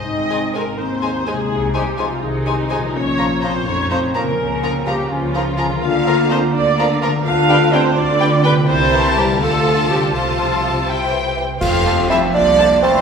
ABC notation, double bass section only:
X:1
M:6/8
L:1/8
Q:3/8=83
K:Ab
V:1 name="Double bass section" clef=bass
A,,,3 E,,3 | C,,3 C,,3 | B,,,3 F,,,3 | D,,3 D,,3 |
[K:F] D,,3 D,,3 | D,,3 D,,3 | C,,3 D,,3 | C,,4- C,, z |
F,,,3 C,,3 |]